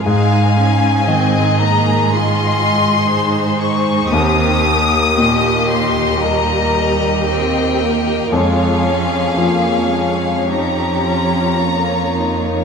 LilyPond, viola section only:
\new Staff \with { instrumentName = "Viola section" } { \time 4/4 \key aes \major \tempo 4 = 58 << { ees'4 ees'4 f'4 ees'4~ | ees'4 g'8 g'2~ g'8 | f'4 des'4 ees'8 f'8 des'8 ees'8 | } \\ { aes8 des'8 c'8 bes8 aes8 aes4. | c'8 bes4. g4 c'8 bes8 | aes8 des'8 bes8 aes8 des'4 bes4 | } >> }